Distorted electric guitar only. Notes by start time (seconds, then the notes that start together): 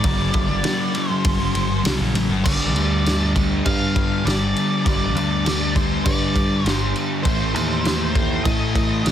0.04 G2 D3 G3
0.50 D3 G3
0.64 G2 D3 G3
0.95 G2 D3 G3
1.09 D3 G3
1.39 D3 G3
1.54 G2 D3 G3
1.70 muted distorted electric guitar stroke
1.85 G2 D3 G3
2.15 G2 D3 G3
2.31 muted distorted electric guitar stroke
2.44 G2 D3 G3
2.75 D3 G3
3.05 G2 D3 G3
3.36 D3 G3
3.95 D3 G3
4.25 G2 D3 G3
4.85 G2 D3 G3
5.16 D3 G3
5.45 G2 D3 G3
5.75 D3 G3
6.35 D3 G3
6.65 G2 D3 G3
7.24 A2 E3 A3
7.55 E3 A3
7.85 A2 E3 A3
8.15 E3 A3
8.74 E3 A3
9.03 A2 E3 A3